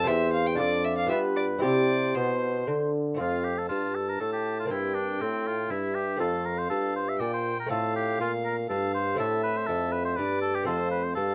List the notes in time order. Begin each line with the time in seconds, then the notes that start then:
0.04 E2 C4 G4 C5 E5
0.08 E2 C5
0.33 F5
0.47 G5
0.55 D4 F4 A4 D5
0.59 F2 D5
0.85 E5
0.98 F5
1.06 B3 F4 G4 E5
1.11 G2 B4
1.36 D5
1.59 C4 E4 G4
1.63 C3 C5 D5
2.15 B2 C5
2.67 D3
3.14 A3 C4 F4
3.19 F2 F5
3.44 G4
3.58 A4
3.69 G2 F4 A5
3.95 A4
4.09 A#4
4.20 A2 A4
4.33 G4
4.59 F4
4.65 A#3 C4
4.70 G2 E4 G5
4.94 D4
5.21 A2 C4
5.47 F4
5.70 G2 E4 E5
5.95 G4
6.16 A3 C4 F4 A4 F5
6.21 F2
6.45 A#4
6.58 C5
6.70 G2 A4
6.96 C5
7.09 E5
7.20 A#2 D5 G5
7.34 C5
7.59 A#4
7.66 A2 A3 C4 F4 A4 F5
7.71 A2
7.96 G4
8.20 A#2 F4
8.45 A#4
8.69 G2 A4 F5
8.94 C5
9.15 A2 A3 C4 E4 E5
9.19 A2 A4
9.43 B4
9.57 C5
9.66 F2 A4
9.92 B4
10.05 C5
10.16 G2 B4 D5
10.41 A4
10.55 G4
10.63 A3 C4 F4 A4
10.67 F2 C5
10.91 B4
11.03 C5
11.15 G2 A4 F5